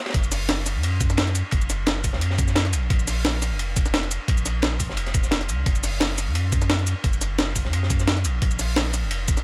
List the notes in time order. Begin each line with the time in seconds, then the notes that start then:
0.06 snare, ride
0.10 snare, ride
0.14 F#1, kick, closed hi-hat, ride
0.23 ride, cabasa
0.32 snare, closed hi-hat, open hi-hat, cabasa
0.49 snare, closed hi-hat, ride
0.66 snare, closed hi-hat, ride, cabasa
0.75 F#2
0.83 closed hi-hat, ride
1.00 kick, closed hi-hat, ride, cabasa
1.10 snare, cabasa
1.17 snare, closed hi-hat, ride
1.27 closed hi-hat
1.35 closed hi-hat, ride, cabasa
1.51 F#1, kick, closed hi-hat, ride
1.62 ride, cabasa
1.70 snare, closed hi-hat, ride, cabasa
1.86 snare, closed hi-hat, ride
2.04 kick, open hi-hat, ride, cabasa
2.13 F#2, snare
2.21 closed hi-hat, ride
2.31 snare
2.38 kick, closed hi-hat, ride, cabasa
2.48 snare, cabasa
2.55 snare, closed hi-hat, ride
2.65 snare, closed hi-hat
2.73 A#1, closed hi-hat, ride, cabasa
2.90 A#1, kick, closed hi-hat, ride
2.99 ride, cabasa
3.07 snare, closed hi-hat, open hi-hat, cabasa
3.25 snare, closed hi-hat, ride
3.42 snare, closed hi-hat, ride, cabasa
3.51 F1
3.59 closed hi-hat, ride
3.77 kick, closed hi-hat, ride, cabasa
3.86 snare, cabasa
3.94 snare, closed hi-hat, ride
4.03 closed hi-hat
4.11 closed hi-hat, ride, cabasa
4.28 A#1, kick, closed hi-hat, ride
4.38 ride, cabasa
4.46 snare, closed hi-hat, ride, cabasa
4.62 snare, closed hi-hat, ride
4.80 kick, open hi-hat, ride, cabasa
4.89 F1, snare
4.97 closed hi-hat, ride
5.06 snare, closed hi-hat
5.14 kick, closed hi-hat, ride, cabasa
5.23 snare, cabasa
5.31 snare, closed hi-hat, ride
5.41 snare, closed hi-hat
5.49 C#2, closed hi-hat, ride, cabasa
5.66 F#1, kick, closed hi-hat, ride
5.75 ride, cabasa
5.83 snare, closed hi-hat, open hi-hat, cabasa
6.00 snare, closed hi-hat, ride
6.18 snare, closed hi-hat, ride, cabasa
6.27 F#2
6.35 closed hi-hat, ride
6.52 kick, closed hi-hat, ride, cabasa
6.62 snare, cabasa
6.70 snare, closed hi-hat, ride
6.79 closed hi-hat
6.87 closed hi-hat, ride, cabasa
7.04 F#1, kick, closed hi-hat, ride
7.13 ride, cabasa
7.21 snare, closed hi-hat, ride, cabasa
7.38 snare, closed hi-hat, ride
7.55 kick, open hi-hat, ride, cabasa
7.65 F#2, snare
7.73 closed hi-hat, ride
7.83 snare
7.90 kick, closed hi-hat, ride, cabasa
7.99 snare, cabasa
8.07 snare, closed hi-hat, ride
8.17 snare, closed hi-hat
8.25 A#1, closed hi-hat, ride, cabasa
8.42 A#1, kick, closed hi-hat, ride
8.51 ride, cabasa
8.59 snare, closed hi-hat, open hi-hat, cabasa
8.76 snare, closed hi-hat, ride
8.94 snare, closed hi-hat, ride, cabasa
9.03 F1
9.11 closed hi-hat, ride
9.28 kick, closed hi-hat, ride, cabasa
9.37 snare, cabasa